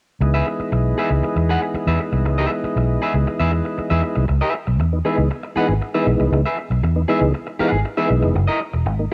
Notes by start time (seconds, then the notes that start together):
0.21 C#2 E3 G#3 B3 D#4, muted clean electric guitar stroke
0.34 G#4 B4 E5
0.47 muted clean electric guitar stroke
0.60 muted fingered electric bass stroke, muted clean electric guitar stroke
0.72 B1, muted clean electric guitar stroke
0.98 G#4 B4 E5
1.10 C#2, muted clean electric guitar stroke
1.23 muted fingered electric bass stroke, muted clean electric guitar stroke
1.36 E2, muted clean electric guitar stroke
1.49 G#4 B4 F#5
1.63 muted clean electric guitar stroke
1.74 muted fingered electric bass stroke, muted clean electric guitar stroke
1.87 E2 G#4 B4 E5
2.00 muted clean electric guitar stroke
2.12 C2, muted clean electric guitar stroke
2.25 C#2, muted clean electric guitar stroke
2.38 G#4 B4 E5
2.51 muted clean electric guitar stroke
2.64 muted fingered electric bass stroke, muted clean electric guitar stroke
2.76 B1, muted clean electric guitar stroke
3.02 G#4 B4 E5
3.14 C#2, muted clean electric guitar stroke
3.27 muted clean electric guitar stroke
3.39 E2 G#4 B4 E5
3.52 muted clean electric guitar stroke
3.65 muted clean electric guitar stroke
3.78 muted clean electric guitar stroke, muted fingered electric bass stroke
3.90 E2 G#4 B4 E5
4.03 muted clean electric guitar stroke
4.16 C2, muted clean electric guitar stroke
4.28 C#2, muted clean electric guitar stroke
4.41 G#4 B4 E5
4.54 muted clean electric guitar stroke
4.67 B1, muted clean electric guitar stroke
4.80 E2, muted clean electric guitar stroke
4.93 B3 D#4
5.05 E3 G#3 B3 D#4 G#4 B4 E5
5.18 C#2, muted clean electric guitar stroke
5.31 muted clean electric guitar stroke
5.43 muted clean electric guitar stroke
5.56 E3 G#3 B3 D#4 G#4 B4 F#5, muted fingered electric bass stroke
5.69 G#1, muted clean electric guitar stroke
5.82 muted clean electric guitar stroke
5.94 E3 G#3 B3 D#4 G#4 B4 E5
6.07 B1, muted clean electric guitar stroke
6.20 C2, muted clean electric guitar stroke
6.32 C#2, muted clean electric guitar stroke
6.45 G#4 B4 E5
6.58 muted clean electric guitar stroke
6.70 B1, muted clean electric guitar stroke
6.83 E2, muted clean electric guitar stroke
6.96 B3 D#4
7.08 E3 G#3 B3 D#4 G#4 B4 E5
7.21 C#2, muted clean electric guitar stroke
7.34 muted clean electric guitar stroke
7.47 muted clean electric guitar stroke
7.59 E3 G#3 B3 D#4 G#4 B4 F#5, muted fingered electric bass stroke
7.72 G#1, muted clean electric guitar stroke
7.85 muted clean electric guitar stroke
7.97 E3 G#3 B3 D#4 G#4 B4 E5
8.10 B1, muted clean electric guitar stroke
8.22 F1, muted clean electric guitar stroke
8.35 F#1, muted clean electric guitar stroke
8.47 E4 A#4 D#5
8.60 muted clean electric guitar stroke
8.73 E1, muted clean electric guitar stroke
8.86 G#1, muted clean electric guitar stroke
8.99 A#3 D#4